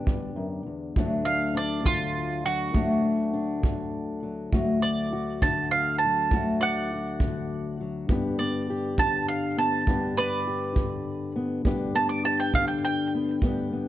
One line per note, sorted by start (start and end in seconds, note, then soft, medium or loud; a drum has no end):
0.00 1.83 D3 medium
0.00 0.92 B3 medium
0.00 0.98 D4 medium
0.00 0.62 G4 medium
0.00 0.92 G4 medium
0.06 0.36 G2 medium
0.06 kick medium
0.36 0.66 F#2 medium
0.66 0.96 E2 medium
0.96 2.73 D2 medium
0.96 1.26 F#3 medium
0.96 2.75 A3 medium
0.96 1.54 D4 medium
0.96 kick medium
1.25 2.44 F#3 soft
1.25 1.54 F5 medium
1.55 2.75 D4 medium
1.55 1.85 D5 medium
1.84 3.63 D3 medium
1.84 2.43 F4 medium
1.84 kick medium
2.44 2.74 F#3 medium
2.44 4.19 F#4 medium
2.74 4.51 D2 medium
2.74 3.03 F#3 medium
2.74 4.52 A3 medium
2.74 3.33 D4 medium
2.74 kick medium
3.04 4.21 F#3 medium
3.34 4.53 D4 medium
3.63 5.42 D3 medium
3.63 kick medium
4.23 4.51 F#3 medium
4.52 6.31 D2 medium
4.52 4.82 F#3 medium
4.52 6.31 A3 medium
4.52 5.11 F#4 medium
4.52 kick medium
4.82 6.01 F#3 medium
4.82 5.40 D5 medium
5.13 6.31 F#4 medium
5.42 7.21 D3 medium
5.42 5.71 A5 medium
5.42 kick medium
5.71 5.98 F5 medium
5.98 6.57 A5 medium
6.05 6.32 F#3 medium
6.31 8.09 D2 medium
6.31 6.62 F#3 medium
6.31 8.10 A3 medium
6.31 6.91 F#4 medium
6.31 kick medium
6.61 7.79 F#3 medium
6.61 7.75 D5 medium
6.61 7.77 F#5 medium
6.93 8.07 F#4 medium
7.20 8.97 D3 medium
7.20 kick medium
7.81 8.10 F#3 medium
8.09 9.87 G2 medium
8.09 8.39 B3 medium
8.09 9.88 D4 medium
8.09 8.70 G4 medium
8.09 kick medium
8.39 9.57 B3 medium
8.39 8.96 D5 medium
8.70 9.89 G4 medium
8.98 10.74 D3 medium
8.98 9.27 A5 medium
8.98 kick medium
9.28 9.57 F5 medium
9.57 9.88 B3 medium
9.57 10.15 A5 medium
9.87 11.61 G2 medium
9.87 10.16 B3 medium
9.87 11.65 D4 medium
9.87 10.46 G4 medium
9.87 kick medium
10.17 11.35 B3 medium
10.17 11.31 B4 medium
10.17 11.32 D5 medium
10.47 11.61 G4 medium
10.75 12.53 D3 medium
10.75 kick medium
11.36 11.61 B3 medium
11.65 13.41 G2 medium
11.65 11.94 B3 medium
11.65 13.43 D4 medium
11.65 12.24 G4 medium
11.65 kick medium
11.95 13.12 B3 medium
11.95 12.08 A5 medium
12.09 12.22 D6 medium
12.25 13.42 G4 medium
12.25 12.38 A5 medium
12.40 12.53 G5 medium
12.54 13.88 D3 medium
12.54 12.67 F5 medium
12.54 kick medium
12.68 12.81 G5 medium
12.85 13.12 G5 medium
13.15 13.42 B3 medium
13.42 13.88 G2 medium
13.42 13.71 B3 medium
13.42 13.88 D4 medium
13.42 13.88 G4 medium
13.42 kick medium
13.72 13.88 B3 medium